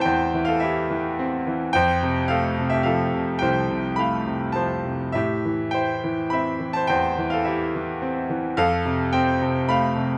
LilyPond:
<<
  \new Staff \with { instrumentName = "Grand piano" } { \time 3/4 \key a \minor \tempo 4 = 107 <c'' g''>8. <a' f''>16 <g' e''>4. r8 | <c'' g''>4 <a' f''>8. <g' e''>16 <a' f''>4 | <c'' g''>4 <f'' b''>4 <c'' a''>8. r16 | <g' e''>4 <c'' g''>4 <e'' b''>8. <c'' a''>16 |
<c'' g''>8. <a' f''>16 <g' e''>4. r8 | <a' f''>4 <c'' g''>4 <f'' b''>4 | }
  \new Staff \with { instrumentName = "Grand piano" } { \clef bass \time 3/4 \key a \minor <e, e c'>8 e8 e'8 e8 c'8 e8 | f,8 c8 a8 c8 f8 c8 | c,8 c8 a8 c8 f8 c8 | a,8 e8 e'8 e8 c'8 e8 |
e,8 e8 e'8 e8 c'8 e8 | f,8 c8 c'8 c8 a8 c8 | }
>>